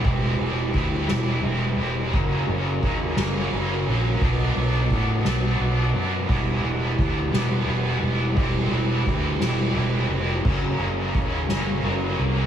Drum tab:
CC |------|x-----|------|x-----|
RD |xxxxxx|-xxxxx|xxxxxx|-xxxxx|
SD |---o--|---o--|---o--|---o--|
BD |o-o---|o-o---|o-o---|o-o---|

CC |------|x-----|
RD |xxxxxx|-xxxxx|
SD |---o--|---o--|
BD |o-o---|o-o---|